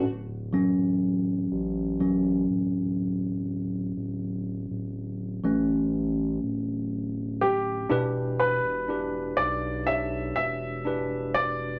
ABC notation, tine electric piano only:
X:1
M:4/4
L:1/8
Q:1/4=61
K:D
V:1 name="Tine electric piano"
z8 | z8 | [DEGB]2 [DEGB]2 [DEGc]2 [DEGB]2 |]
V:2 name="Tine electric piano" clef=bass
z [E,F,C]3 [E,F,C] z3 | z3 [E,A,C]4- [E,A,C] | B,,3 z4 z |]